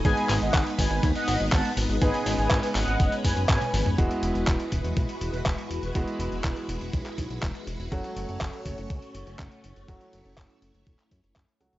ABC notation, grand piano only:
X:1
M:4/4
L:1/8
Q:1/4=122
K:E
V:1 name="Grand piano"
[G,B,DG]6- [G,B,DG] z | [G,B,DG]6- [G,B,DG] z | [G,B,EF]6- [G,B,EF] z | [G,B,EF]6- [G,B,EF] z |
[F,A,CF]6- [F,A,CF] z | [F,A,CF]6- [F,A,CF] [F,A,CF] |]